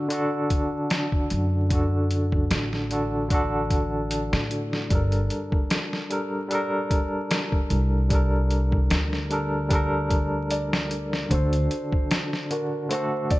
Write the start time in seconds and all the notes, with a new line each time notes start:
Already playing: D3 D4 F#4 A4
0.08 D3 D4 F#4, closed hi-hat
0.14 A4
0.50 kick, closed hi-hat
0.90 snare, closed hi-hat
1.12 kick
1.30 F#2, closed hi-hat
1.69 D3 D4 F#4, kick, closed hi-hat
1.75 A4
2.11 closed hi-hat
2.32 kick
2.51 A1, snare, closed hi-hat
2.73 snare
2.91 D3 D4 F#4 A4, closed hi-hat
3.28 D3 D4 F#4, kick, closed hi-hat
3.34 A4
3.70 kick, closed hi-hat
4.11 closed hi-hat
4.33 A2, snare
4.51 closed hi-hat
4.73 snare
4.89 G1 G3 D4 A4, kick, closed hi-hat
4.95 A#4
5.12 closed hi-hat
5.30 closed hi-hat
5.52 kick
5.70 snare, closed hi-hat
5.93 snare
6.10 G3 D4 A4 A#4, closed hi-hat
6.49 G3 D4 A4, closed hi-hat
6.55 A#4
6.91 kick, closed hi-hat
7.31 snare, closed hi-hat
7.52 kick
7.70 C2, closed hi-hat
8.09 G3 D4 A4, kick, closed hi-hat
8.15 A#4
8.51 closed hi-hat
8.72 kick
8.90 D2, snare, closed hi-hat
9.13 snare
9.30 G3 D4 A4 A#4, closed hi-hat
9.69 G3 D4 A4, kick, closed hi-hat
9.75 A#4
10.10 kick, closed hi-hat
10.51 D5, closed hi-hat
10.73 snare
10.91 closed hi-hat
11.13 snare
11.29 D2 D3 D4 F#4 C5, kick, closed hi-hat
11.35 A4
11.53 closed hi-hat
11.71 closed hi-hat
11.92 kick
12.11 snare, closed hi-hat
12.33 snare
12.50 D3 D4 F#4 A#4, closed hi-hat
12.89 D3 A3 F#4 C5, closed hi-hat
12.95 A4
13.31 D5, kick, closed hi-hat